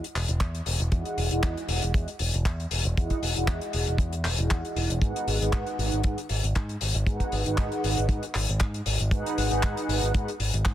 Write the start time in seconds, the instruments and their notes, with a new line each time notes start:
0.04 closed hi-hat
0.15 picked electric bass E1, clap, open hi-hat
0.28 picked electric bass E1, closed hi-hat
0.40 picked electric bass E2, kick, clap, closed hi-hat
0.55 closed hi-hat
0.66 picked electric bass E1, open hi-hat
0.80 picked electric bass E1, closed hi-hat
0.92 picked electric bass E2, analog polysynth E4 G#4 D#5 F#5, kick, closed hi-hat
1.05 closed hi-hat
1.17 picked electric bass E1, open hi-hat
1.30 picked electric bass E1, analog polysynth E4 G#4 D#5 F#5, closed hi-hat
1.43 picked electric bass E2, kick, clap, closed hi-hat
1.57 closed hi-hat
1.68 picked electric bass E1, open hi-hat
1.82 picked electric bass E1, closed hi-hat
1.94 picked electric bass E2, kick, closed hi-hat
2.08 closed hi-hat
2.19 picked electric bass E1, open hi-hat
2.34 picked electric bass E1, closed hi-hat
2.45 picked electric bass E2, kick, clap, closed hi-hat
2.60 closed hi-hat
2.71 picked electric bass E1, open hi-hat
2.84 picked electric bass E1, closed hi-hat
2.96 picked electric bass E2, analog polysynth E4 G#4 D#5 F#5, kick, closed hi-hat
3.10 kick, closed hi-hat
3.22 picked electric bass E1, open hi-hat
3.35 picked electric bass E1, analog polysynth E4 G#4 D#5 F#5, closed hi-hat
3.48 picked electric bass E2, kick, clap, closed hi-hat
3.61 closed hi-hat
3.73 picked electric bass E1, open hi-hat
3.87 picked electric bass E1, closed hi-hat
3.98 picked electric bass E2, kick, closed hi-hat
4.13 closed hi-hat
4.24 picked electric bass E1, clap, open hi-hat
4.37 picked electric bass E1, analog polysynth E4 G#4 D#5 F#5, closed hi-hat
4.51 picked electric bass E2, kick, clap, closed hi-hat
4.65 closed hi-hat
4.76 picked electric bass E1, open hi-hat
4.90 picked electric bass E1, closed hi-hat
5.02 picked electric bass G#2, analog polysynth D#4 G#4 B4 F#5, kick, closed hi-hat
5.16 closed hi-hat
5.27 picked electric bass G#1, open hi-hat
5.40 picked electric bass G#1, analog polysynth D#4 G#4 B4 F#5, closed hi-hat
5.53 picked electric bass G#2, kick, clap, closed hi-hat
5.67 closed hi-hat
5.79 picked electric bass G#1, open hi-hat
5.92 picked electric bass G#1, closed hi-hat
6.03 picked electric bass G#2, analog polysynth D#4 G#4 B4 F#5, kick, closed hi-hat
6.18 closed hi-hat
6.29 picked electric bass G#1, open hi-hat
6.43 picked electric bass G#1, closed hi-hat
6.55 picked electric bass G#2, kick, clap, closed hi-hat
6.69 closed hi-hat
6.81 picked electric bass G#1, open hi-hat
6.95 picked electric bass G#1, closed hi-hat
7.06 picked electric bass G#2, analog polysynth D#4 G#4 B4 F#5, kick, closed hi-hat
7.20 kick, closed hi-hat
7.32 picked electric bass G#1, open hi-hat
7.45 picked electric bass G#1, analog polysynth D#4 G#4 B4 F#5, closed hi-hat
7.58 picked electric bass G#2, kick, clap, closed hi-hat
7.72 closed hi-hat
7.84 picked electric bass G#1, open hi-hat
7.97 picked electric bass G#1, closed hi-hat
8.09 picked electric bass G#2, analog polysynth D#4 B4, kick, closed hi-hat
8.23 closed hi-hat
8.34 picked electric bass G#1, clap, open hi-hat
8.49 picked electric bass G#1, closed hi-hat
8.60 picked electric bass G#2, kick, clap, closed hi-hat
8.74 closed hi-hat
8.86 picked electric bass G#1, open hi-hat
9.00 picked electric bass G#1, closed hi-hat
9.11 picked electric bass G#2, analog polysynth D#4 G#4 B4 F#5, kick, closed hi-hat
9.26 closed hi-hat
9.38 picked electric bass G#1, open hi-hat
9.49 picked electric bass G#1, analog polysynth D#4 G#4 B4 F#5, closed hi-hat
9.63 picked electric bass G#2, kick, clap, closed hi-hat
9.77 closed hi-hat
9.89 picked electric bass G#1, open hi-hat
10.02 picked electric bass G#1, closed hi-hat
10.14 picked electric bass G#2, analog polysynth D#4 G#4 B4 F#5, kick, closed hi-hat
10.28 closed hi-hat
10.40 picked electric bass G#1, open hi-hat
10.54 picked electric bass G#1, closed hi-hat
10.65 picked electric bass G#2, kick, clap, closed hi-hat